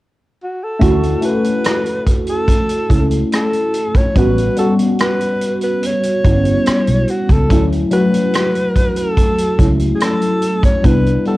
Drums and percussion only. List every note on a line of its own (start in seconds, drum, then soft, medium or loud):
0.81 kick medium
0.81 closed hi-hat medium
1.03 closed hi-hat soft
1.22 closed hi-hat medium
1.44 closed hi-hat medium
1.64 cross-stick loud
1.64 closed hi-hat medium
1.86 closed hi-hat soft
2.07 kick medium
2.07 closed hi-hat medium
2.27 closed hi-hat soft
2.48 kick medium
2.48 closed hi-hat medium
2.69 closed hi-hat medium
2.90 kick medium
2.90 closed hi-hat medium
3.11 closed hi-hat soft
3.32 cross-stick medium
3.32 closed hi-hat medium
3.53 closed hi-hat soft
3.74 closed hi-hat medium
3.95 kick medium
3.95 closed hi-hat soft
4.16 kick loud
4.16 closed hi-hat medium
4.38 closed hi-hat soft
4.56 closed hi-hat medium
4.79 closed hi-hat medium
4.99 cross-stick loud
4.99 closed hi-hat medium
5.20 closed hi-hat soft
5.41 closed hi-hat medium
5.61 closed hi-hat medium
5.83 closed hi-hat medium
6.03 closed hi-hat medium
6.25 kick medium
6.25 closed hi-hat medium
6.45 closed hi-hat soft
6.66 cross-stick medium
6.66 closed hi-hat medium
6.87 closed hi-hat soft
7.08 closed hi-hat medium
7.29 kick medium
7.29 closed hi-hat soft
7.50 kick loud
7.50 closed hi-hat medium
7.72 closed hi-hat soft
7.91 closed hi-hat medium
8.14 closed hi-hat medium
8.34 cross-stick loud
8.34 closed hi-hat medium
8.55 closed hi-hat soft
8.76 kick medium
8.76 closed hi-hat medium
8.96 closed hi-hat soft
9.17 kick medium
9.17 closed hi-hat medium
9.38 closed hi-hat medium
9.59 kick medium
9.59 closed hi-hat medium
9.79 closed hi-hat soft
10.00 cross-stick medium
10.00 closed hi-hat medium
10.21 closed hi-hat soft
10.42 closed hi-hat medium
10.63 kick medium
10.63 closed hi-hat medium
10.84 kick medium
10.84 closed hi-hat medium
11.06 closed hi-hat soft
11.25 closed hi-hat medium